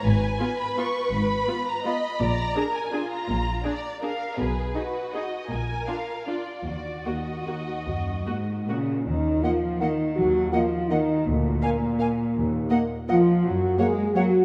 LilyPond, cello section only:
\new Staff \with { instrumentName = "Cello section" } { \clef bass \time 3/4 \key ees \minor \tempo 4 = 162 aes,4 r2 | aes,4 r2 | bes,4 r2 | bes,4 r2 |
b,4 r2 | bes,4 r2 | ees,4 ees,4 ees,4 | ges,4 aes,4 <bes, des>4 |
ees4 f4 ees4 | ges4 f4 ees4 | bes,2.~ | bes,4. r8 f4 |
ges4 aes4 ges4 | }